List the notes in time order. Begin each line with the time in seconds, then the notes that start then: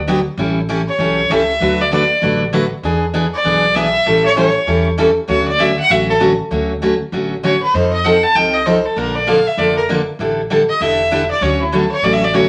Already playing: D2
0.07 D3 F#3 B3 D4 G4
0.38 A1 E3 G3 C#4 E4 A4
0.69 E3 G3 C#4 E4 A4
0.88 C#5
0.99 B1 E3 G3 C#4 E4 A4
1.30 C#2 E3 G3 C#4 E4 A4 E5
1.60 D2 D3 F#3 A3 D4 F#4 B4
1.81 D5
1.92 D3 F#3 A3 D4 F#4 B4 D5
2.22 A1 D3 F#3 A3 D4 F#4 B4
2.53 D3 F#3 A3 D4 F#4 B4
2.83 E2 E3 B3 D4 G#4
3.14 E3 B3 D4 G#4
3.34 D5
3.44 B1 E3 B3 D4 G#4
3.75 E3 B3 D4 G#4 E5
4.06 A1 E3 G3 C#4 E4 A4
4.26 C#5
4.36 E3 G3 C#4 E4 A4 C#5
4.67 E2 E3 G3 C#4 E4 A4
4.98 E3 G3 C#4 E4 A4
5.28 D2 D3 F#3 A3 C#4 F#4 C#5
5.48 D5
5.58 D3 F#3 A3 C#4 F#4 E5
5.79 F#5
5.89 A1 D3 F#3 A3 C#4 F#4 E5
6.10 A4
6.20 D3 F#3 A3 C#4 F#4
6.51 D2 D3 F#3 A3 C#4 F#4
6.82 D3 F#3 A3 C#4 F#4
7.12 A1 D3 F#3 A3 C#4 F#4
7.43 D3 F#3 A3 C#4 F#4 C#5
7.63 B4
7.74 F2 F3 C4 D#4 A4 C5
7.93 D#5
8.05 F3 C4 D#4 A4 F#5
8.23 A5
8.35 C2 F3 C4 D#4 A4 G5
8.54 D#5
8.66 F3 C4 D#4 A4 C5
8.85 A4
8.96 A#1 D3 F3 A#3 D4 A4 A#4
9.15 D5
9.27 D3 F3 A#3 D4 A4 F5
9.47 E5
9.58 F1 D3 F3 A#3 D4 A4 D5
9.77 A#4
9.89 D3 F3 A#3 D4 A4
10.19 A1 D3 G3 D4 E4 A4
10.50 D3 G3 D4 E4 A4
10.69 D#5
10.81 E1 D3 G3 D4 E4 A4 E5
11.11 D3 G3 D4 E4 A4
11.31 D5
11.41 D2 D3 F#3 A3 C#4 F#4 C#5
11.62 E4
11.72 D3 F#3 A3 C#4 F#4 A4
11.92 C#5
12.02 A1 D3 F#3 A3 C#4 F#4 D5
12.13 E5
12.24 D5
12.33 D3 F#3 A3 C#4 F#4 C#5